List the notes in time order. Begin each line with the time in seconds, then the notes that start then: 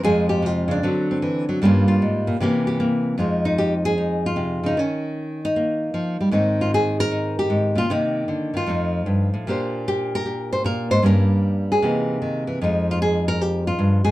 0.03 F2 F3 G#3 C4 G#4
0.29 G4
0.42 C3 F4
0.68 C#3 D4
0.83 D3 F#3 C4
1.11 C4
1.22 E3
1.49 F#3
1.62 G2 G3 A#3 C#4 F4
1.88 F4
2.02 G#2
2.27 A#2
2.40 C3 E3 A#3 C#4 G4
2.67 G4
2.80 A#3
3.18 F2 F3 G#3 D#4 F4
3.45 D#4
3.58 G4
3.85 G#4
3.98 D#4
4.26 F4
4.36 C3
4.63 C#3 D#4
4.77 D#3 C#4
5.45 D#4
5.56 A#3
5.94 F3
6.21 G3
6.31 G#2 D#3 C4 D#4
6.61 F4
6.74 G#4
7.00 A#4
7.11 D#4
7.39 G4
7.50 G#2
7.75 A#2 F4
7.90 C3 D#3 A#3 D#4
8.28 D3
8.54 D#3 F4
8.66 F2 F3 A3 D#4
9.06 G2
9.34 A2
9.47 A#2 A#3 D4 G4 C5
9.88 G4
10.15 A#4
10.26 G4
10.53 C5
10.64 A#2 A#4
10.91 G#2 C5
11.02 G2 G3 A#3 C#4 A#4
11.72 G#4
11.82 C3 E3 A#3 D#4
12.22 D#3
12.47 E3
12.61 F2 F3 G#3 D#4 F4
12.91 F4
13.02 G#4
13.28 A#4
13.41 G4
13.67 F4
13.79 G2
14.04 G#2 G#4